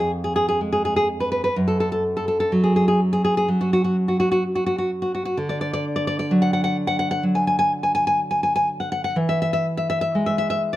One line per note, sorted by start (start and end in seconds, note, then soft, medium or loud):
0.00 1.50 F2 medium
0.00 0.10 G#4 medium
0.24 0.35 G#4 medium
0.36 0.47 G#4 medium
0.49 0.59 G#4 medium
0.61 1.51 G#3 soft
0.72 0.83 G#4 medium
0.85 0.95 G#4 medium
0.96 1.07 G#4 medium
1.20 1.30 B4 medium
1.32 1.42 B4 medium
1.44 1.54 B4 medium
1.56 5.34 F#2 medium
1.68 1.78 A4 medium
1.80 1.91 A4 medium
1.92 2.03 A4 medium
2.17 2.27 A4 medium
2.28 2.39 A4 medium
2.40 2.51 A4 medium
2.52 3.47 F#3 soft
2.64 2.75 G#4 medium
2.76 2.87 G#4 medium
2.88 2.99 G#4 medium
3.13 3.23 G#4 medium
3.25 3.36 G#4 medium
3.37 3.48 G#4 medium
3.48 5.33 F#3 soft
3.61 3.72 F#4 medium
3.73 3.83 F#4 medium
3.84 3.95 F#4 medium
4.08 4.19 F#4 medium
4.20 4.30 F#4 medium
4.32 4.43 F#4 medium
4.55 4.65 F#4 medium
4.66 4.77 F#4 medium
4.78 4.90 F#4 medium
5.02 5.13 F#4 medium
5.15 5.24 F#4 medium
5.25 5.37 F#4 medium
5.37 9.13 D3 medium
5.49 5.60 D5 medium
5.61 5.72 D5 medium
5.73 5.84 D5 medium
5.96 6.06 D5 medium
6.07 6.18 D5 medium
6.19 6.31 D5 medium
6.31 7.22 F#3 medium
6.42 6.52 F#5 medium
6.53 6.63 F#5 medium
6.64 6.76 F#5 medium
6.87 6.98 F#5 medium
6.99 7.10 F#5 medium
7.11 7.23 F#5 medium
7.23 9.12 F#3 soft
7.35 7.46 G#5 medium
7.47 7.58 G#5 medium
7.59 7.71 G#5 medium
7.83 7.94 G#5 medium
7.95 8.06 G#5 medium
8.07 8.19 G#5 medium
8.31 8.42 G#5 medium
8.43 8.54 G#5 medium
8.56 8.68 G#5 medium
8.80 8.91 F#5 medium
8.92 9.03 F#5 medium
9.04 9.16 F#5 medium
9.16 10.77 E3 medium
9.29 9.41 E5 medium
9.42 9.52 E5 medium
9.53 9.65 E5 medium
9.77 9.88 E5 medium
9.90 10.00 E5 medium
10.01 10.13 E5 medium
10.15 10.77 G#3 soft
10.26 10.37 E5 medium
10.38 10.49 E5 medium
10.50 10.61 E5 medium
10.73 10.77 D5 medium